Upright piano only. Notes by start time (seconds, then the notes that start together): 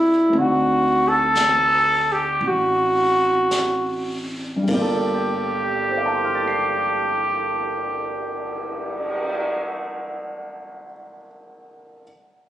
Already playing: B3 C4 D4 E4 G#4
0.29 A3 C4
0.35 D4 D#4
0.40 F#5
4.56 G2
4.62 G3
4.69 A#3
4.74 F4
4.81 A4
5.90 C5
5.97 F5
6.06 A5
6.15 C6
6.24 F6
6.35 A6
6.48 C7